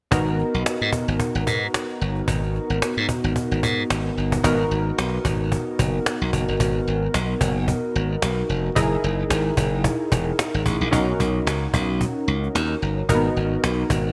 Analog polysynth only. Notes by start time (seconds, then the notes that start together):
0.11 B3 D#4 F#4 A#4
4.44 B3 D#4 F#4 A#4
8.75 D#4 E4 G#4 A#4
10.91 C#4 D#4 F#4 A#4
13.09 A#3 D#4 F#4 A#4
13.15 B3